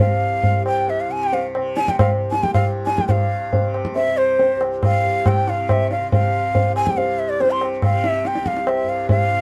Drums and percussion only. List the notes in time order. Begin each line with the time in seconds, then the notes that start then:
0.43 tabla tin, tabla ge
0.66 tabla na
0.88 tabla tin
1.33 tabla tin
1.55 tabla na
1.77 tabla te
1.88 tabla ke
1.99 tabla na, tabla ge
2.32 tabla te
2.43 tabla ke
2.54 tabla na, tabla ge
2.87 tabla te
2.98 tabla ke
3.09 tabla tin, tabla ge
3.53 tabla tin, tabla ge
3.74 tabla na
3.85 tabla ke
3.96 tabla tin
4.39 tabla tin
4.61 tabla na
4.83 tabla na, tabla ge
5.26 tabla na, tabla ge
5.48 tabla te
5.69 tabla na, tabla ge
5.91 tabla te
6.12 tabla tin, tabla ge
6.55 tabla tin, tabla ge
6.76 tabla na
6.87 tabla ke
6.98 tabla tin
7.40 tabla tin
7.61 tabla na
7.82 tabla na, tabla ge
8.04 tabla te
8.25 tabla te
8.35 tabla te
8.46 tabla ke
8.57 tabla te
8.67 tabla na
9.09 tabla tin, tabla ge